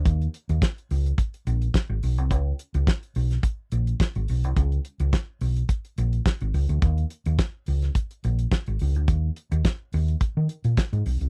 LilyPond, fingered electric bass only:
\new Staff \with { instrumentName = "Fingered electric bass" } { \clef bass \time 4/4 \key dis \minor \tempo 4 = 106 dis,8 r16 dis,16 r8 cis,8 r8 ais,,8 r16 gis,,16 b,,16 bis,,16 | cis,8 r16 cis,16 r8 b,,8 r8 ais,,8 r16 gis,,16 b,,16 bis,,16 | cis,8 r16 cis,16 r8 b,,8 r8 ais,,8 r16 gis,,16 cis,16 d,16 | dis,8 r16 dis,16 r8 cis,8 r8 ais,,8 r16 gis,,16 cis,16 d,16 |
dis,8 r16 dis,16 r8 dis,8 r16 dis16 r16 ais,16 r16 gis,16 b,,16 bis,,16 | }